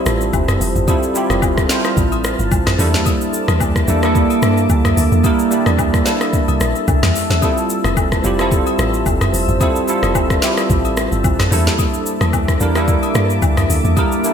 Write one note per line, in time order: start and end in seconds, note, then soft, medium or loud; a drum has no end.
0.00 0.87 G3 medium
0.00 0.88 C4 medium
0.00 0.89 E4 medium
0.00 0.89 F4 medium
0.00 0.54 G4 loud
0.00 0.90 A4 loud
0.00 1.72 C5 medium
0.00 2.75 C5 medium
0.00 11.47 A5 medium
0.00 0.86 E6 medium
0.06 0.31 A1 loud
0.06 cross-stick loud
0.06 shaker medium
0.21 shaker medium
0.33 0.58 F1 loud
0.33 kick loud
0.33 low woodblock medium
0.33 shaker medium
0.48 cross-stick medium
0.48 mid tom loud
0.48 high agogo medium
0.48 shaker medium
0.61 0.74 F1 medium
0.61 open hi-hat medium
0.61 shaker medium
0.76 0.87 G1 medium
0.76 mid tom medium
0.76 shaker soft
0.87 1.10 G3 medium
0.87 1.10 C4 medium
0.87 1.11 E4 medium
0.87 1.11 F4 medium
0.87 1.11 A4 medium
0.87 2.77 F6 medium
0.87 kick loud
0.87 high agogo medium
0.87 shaker medium
1.03 shaker medium
1.15 1.60 G3 medium
1.15 1.60 C4 medium
1.15 1.60 E4 medium
1.15 1.61 F4 medium
1.15 1.61 G4 medium
1.15 shaker medium
1.30 1.66 F1 loud
1.30 cross-stick medium
1.30 high agogo medium
1.30 shaker soft
1.42 kick medium
1.42 low woodblock medium
1.42 shaker medium
1.58 kick medium
1.58 cross-stick medium
1.58 shaker medium
1.69 2.57 G3 medium
1.69 2.58 C4 medium
1.69 2.58 E4 medium
1.69 2.58 F4 medium
1.69 2.59 C5 medium
1.69 snare medium
1.69 shaker loud
1.85 cross-stick medium
1.85 high agogo medium
1.85 shaker soft
1.97 2.36 A1 loud
1.97 kick loud
1.97 shaker medium
2.12 high agogo medium
2.12 shaker soft
2.24 cross-stick loud
2.24 shaker medium
2.39 2.50 G1 medium
2.39 shaker medium
2.51 2.77 A1 medium
2.51 kick loud
2.51 low woodblock medium
2.51 shaker medium
2.66 cross-stick loud
2.66 snare medium
2.66 mid tom loud
2.66 high agogo medium
2.66 shaker medium
2.78 3.04 E2 loud
2.78 3.66 G3 medium
2.78 3.67 A#3 medium
2.78 7.38 A#3 medium
2.78 3.67 D4 medium
2.78 3.67 E4 medium
2.78 3.68 A4 loud
2.78 7.38 E5 medium
2.78 4.95 D6 loud
2.78 open hi-hat medium
2.78 shaker loud
2.94 snare medium
2.94 mid tom medium
2.94 shaker soft
3.06 kick loud
3.06 high agogo medium
3.06 shaker medium
3.21 shaker medium
3.33 shaker medium
3.48 3.85 E2 loud
3.48 cross-stick loud
3.48 high agogo medium
3.48 shaker soft
3.60 kick medium
3.60 low woodblock medium
3.60 shaker medium
3.76 kick medium
3.76 cross-stick medium
3.76 shaker soft
3.87 4.27 E2 loud
3.87 4.00 G3 medium
3.87 4.00 A#3 medium
3.87 4.00 D4 medium
3.87 4.01 E4 medium
3.87 4.01 A4 loud
3.87 shaker loud
4.02 4.89 G3 medium
4.02 4.90 A#3 medium
4.02 4.90 D4 medium
4.02 4.90 E4 medium
4.02 4.91 A4 loud
4.02 cross-stick medium
4.02 high agogo medium
4.02 shaker medium
4.15 kick loud
4.15 shaker medium
4.30 high agogo medium
4.30 shaker soft
4.42 4.67 G2 medium
4.42 cross-stick loud
4.42 shaker medium
4.57 shaker medium
4.70 4.95 D2 medium
4.70 kick loud
4.70 low woodblock medium
4.70 shaker medium
4.85 cross-stick medium
4.85 mid tom loud
4.85 high agogo medium
4.85 shaker medium
4.97 5.11 D2 medium
4.97 11.48 E6 loud
4.97 open hi-hat medium
4.97 shaker medium
5.12 5.23 E2 medium
5.12 mid tom medium
5.12 shaker soft
5.24 5.46 G3 medium
5.24 5.47 A#3 medium
5.24 5.47 D4 medium
5.24 5.47 E4 medium
5.24 5.48 A#4 loud
5.24 kick loud
5.24 high agogo medium
5.24 shaker medium
5.39 shaker medium
5.51 5.96 G3 medium
5.51 5.96 A#3 medium
5.51 5.97 D4 medium
5.51 5.97 E4 medium
5.51 5.97 G4 medium
5.51 shaker medium
5.66 6.03 E2 loud
5.66 cross-stick medium
5.66 high agogo medium
5.66 shaker medium
5.79 kick medium
5.79 low woodblock medium
5.79 shaker medium
5.94 kick medium
5.94 cross-stick medium
5.94 shaker medium
6.05 6.94 G3 medium
6.05 6.94 A#3 medium
6.05 6.94 D4 medium
6.05 6.95 E4 medium
6.05 6.95 A4 medium
6.05 snare medium
6.05 shaker medium
6.21 cross-stick medium
6.21 high agogo medium
6.21 shaker soft
6.33 kick loud
6.33 shaker medium
6.48 6.60 C2 medium
6.48 high agogo medium
6.48 shaker soft
6.61 6.74 A#1 medium
6.61 cross-stick loud
6.61 shaker medium
6.75 shaker soft
6.88 7.02 C2 loud
6.88 kick loud
6.88 low woodblock medium
6.88 shaker medium
7.03 7.14 E2 loud
7.03 cross-stick medium
7.03 snare medium
7.03 mid tom loud
7.03 high agogo medium
7.03 shaker medium
7.16 open hi-hat medium
7.16 shaker medium
7.30 7.41 E2 medium
7.30 snare medium
7.30 shaker soft
7.42 8.09 G3 medium
7.42 8.09 C4 medium
7.42 8.09 E4 medium
7.42 8.10 F4 medium
7.42 8.10 A4 loud
7.42 11.48 C5 medium
7.42 11.48 E5 medium
7.42 kick loud
7.42 high agogo medium
7.42 shaker medium
7.57 shaker medium
7.70 shaker medium
7.84 8.21 F1 loud
7.84 cross-stick medium
7.84 high agogo medium
7.84 shaker soft
7.97 kick medium
7.97 low woodblock medium
7.97 shaker medium
8.12 kick medium
8.12 cross-stick medium
8.12 shaker soft
8.24 8.63 F1 loud
8.24 8.36 G3 medium
8.24 8.36 C4 medium
8.24 8.37 E4 medium
8.24 8.37 F4 medium
8.24 8.37 G4 loud
8.24 shaker loud
8.39 9.26 G3 medium
8.39 9.26 C4 medium
8.39 9.26 E4 medium
8.39 9.27 F4 medium
8.39 9.27 A4 loud
8.39 cross-stick medium
8.39 high agogo medium
8.39 shaker soft
8.52 kick loud
8.52 shaker medium
8.67 high agogo medium
8.67 shaker soft
8.79 9.04 A1 medium
8.79 cross-stick loud
8.79 shaker medium
8.94 shaker medium
9.06 9.31 F1 medium
9.06 kick loud
9.06 low woodblock medium
9.06 shaker medium
9.21 cross-stick medium
9.21 mid tom loud
9.21 high agogo medium
9.21 shaker medium
9.33 9.47 F1 medium
9.33 open hi-hat medium
9.33 shaker medium
9.48 9.60 G1 medium
9.48 mid tom medium
9.48 shaker soft
9.60 9.83 G3 medium
9.60 9.83 C4 medium
9.60 9.83 E4 medium
9.60 9.84 F4 medium
9.60 9.84 A4 loud
9.60 kick loud
9.60 high agogo medium
9.60 shaker medium
9.76 shaker medium
9.87 10.32 G3 medium
9.87 10.33 C4 medium
9.87 10.33 E4 medium
9.87 10.33 F4 medium
9.87 10.34 A4 medium
9.87 shaker medium
10.03 10.39 F1 medium
10.03 cross-stick medium
10.03 high agogo medium
10.03 shaker soft
10.15 kick medium
10.15 low woodblock medium
10.15 shaker medium
10.30 kick medium
10.30 cross-stick medium
10.30 shaker medium
10.42 11.30 G3 medium
10.42 11.30 C4 medium
10.42 11.31 E4 medium
10.42 11.31 F4 medium
10.42 11.31 G4 medium
10.42 snare medium
10.42 shaker loud
10.57 cross-stick medium
10.57 high agogo medium
10.57 shaker soft
10.70 11.08 A1 loud
10.70 kick loud
10.70 shaker medium
10.85 high agogo medium
10.85 shaker soft
10.97 cross-stick loud
10.97 shaker medium
11.12 11.23 G1 medium
11.12 shaker medium
11.24 11.49 A1 medium
11.24 kick loud
11.24 low woodblock medium
11.24 shaker medium
11.39 cross-stick medium
11.39 snare medium
11.39 mid tom loud
11.39 high agogo medium
11.39 shaker medium
11.51 11.77 E2 loud
11.51 12.39 G3 medium
11.51 12.39 A#3 medium
11.51 14.33 A#3 medium
11.51 12.40 D4 medium
11.51 12.40 E4 medium
11.51 12.40 A4 loud
11.51 14.33 E5 medium
11.51 14.33 A5 medium
11.51 14.33 D6 medium
11.51 open hi-hat medium
11.51 shaker loud
11.67 snare medium
11.67 mid tom medium
11.67 shaker soft
11.79 kick loud
11.79 high agogo medium
11.79 shaker medium
11.94 shaker medium
12.06 shaker medium
12.21 12.57 E2 medium
12.21 cross-stick medium
12.21 high agogo medium
12.21 shaker soft
12.33 kick medium
12.33 low woodblock medium
12.33 shaker medium
12.48 kick medium
12.48 cross-stick medium
12.48 shaker medium
12.60 12.99 E2 medium
12.60 12.72 G3 medium
12.60 12.73 A#3 medium
12.60 12.73 D4 medium
12.60 12.73 E4 medium
12.60 12.74 A#4 loud
12.60 shaker medium
12.75 13.62 G3 medium
12.75 13.62 A#3 medium
12.75 13.63 D4 medium
12.75 13.63 E4 medium
12.75 13.63 A4 loud
12.75 cross-stick medium
12.75 high agogo medium
12.75 shaker soft
12.88 kick loud
12.88 shaker medium
13.03 high agogo medium
13.03 shaker soft
13.15 13.40 G2 loud
13.15 cross-stick loud
13.15 shaker medium
13.30 shaker medium
13.42 13.67 D2 medium
13.42 kick loud
13.42 low woodblock medium
13.42 shaker medium
13.57 cross-stick medium
13.57 mid tom loud
13.57 high agogo medium
13.57 shaker medium
13.70 13.83 D2 medium
13.70 open hi-hat medium
13.70 shaker medium
13.85 13.96 E2 medium
13.85 mid tom medium
13.85 shaker soft
13.96 14.19 G3 medium
13.96 14.19 A#3 medium
13.96 14.20 D4 medium
13.96 14.20 E4 medium
13.96 14.20 A#4 loud
13.96 kick loud
13.96 high agogo medium
13.96 shaker medium
14.12 shaker medium
14.24 14.33 G3 medium
14.24 14.33 A#3 medium
14.24 14.33 D4 medium
14.24 14.33 E4 medium
14.24 14.33 A4 medium
14.24 shaker medium